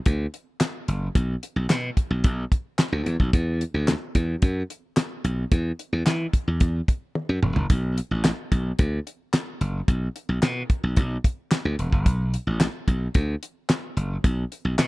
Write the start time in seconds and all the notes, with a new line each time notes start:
0.06 D2, kick, closed hi-hat
0.34 closed hi-hat
0.60 snare, clap, closed hi-hat
0.88 F#1, closed hi-hat
1.15 B1, kick, closed hi-hat
1.43 closed hi-hat
1.56 B1
1.70 B2, snare, clap, closed hi-hat
1.97 kick, closed hi-hat
2.11 B1
2.24 B1, kick, closed hi-hat
2.52 kick, closed hi-hat
2.79 snare, clap, closed hi-hat
2.92 D2
3.06 E2, closed hi-hat
3.20 B1, kick
3.33 E2, kick, closed hi-hat
3.61 closed hi-hat
3.74 D2
3.88 snare, clap, closed hi-hat
4.15 E2, kick, closed hi-hat
4.42 F#2, kick, closed hi-hat
4.70 closed hi-hat
4.97 snare, clap, closed hi-hat
5.24 B1, closed hi-hat
5.52 E2, kick, closed hi-hat
5.79 closed hi-hat
5.93 E2
6.06 E3, snare, clap, closed hi-hat
6.33 kick, closed hi-hat
6.48 E2
6.60 E2, kick, closed hi-hat
6.88 kick, closed hi-hat
7.15 high tom
7.29 F#2
7.43 E1, mid tom
7.56 F#1, floor tom
7.70 B1, kick, closed hi-hat
7.98 closed hi-hat
8.11 A1
8.24 snare, clap, closed hi-hat
8.52 B1, kick, closed hi-hat
8.79 D2, kick, closed hi-hat
9.07 closed hi-hat
9.33 snare, clap, closed hi-hat
9.61 F#1, closed hi-hat
9.88 B1, kick, closed hi-hat
10.16 closed hi-hat
10.29 B1
10.42 B2, snare, clap, closed hi-hat
10.70 kick, closed hi-hat
10.83 B1
10.96 B1, kick, closed hi-hat
11.24 kick, closed hi-hat
11.51 snare, clap, closed hi-hat
11.65 D2
11.79 E1, closed hi-hat
11.93 F#1, kick
12.06 B1, kick, closed hi-hat
12.34 closed hi-hat
12.47 A1
12.60 snare, clap, closed hi-hat
12.88 B1, kick, closed hi-hat
13.14 D2, kick, closed hi-hat
13.43 closed hi-hat
13.69 snare, clap, closed hi-hat
13.97 F#1, closed hi-hat
14.24 B1, kick, closed hi-hat
14.52 closed hi-hat
14.65 B1
14.79 B2, snare, clap, closed hi-hat